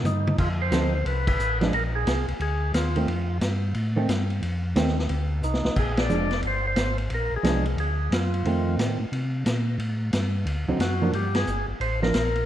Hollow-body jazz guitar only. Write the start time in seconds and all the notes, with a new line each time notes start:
0.72 F3 C4 D#4 A4
1.61 F3 G#3 D4
2.96 D#3 A3 C4
3.96 D#3 A3 C4
4.76 D#3 A3 C4
6.09 F3 G#3 D4
7.43 F3 G#3 D4
8.46 D#3 A3 C4
10.69 D3 F#3 C4 D#4
11.02 F3 A#3 D4
12.02 F3 A#3 D4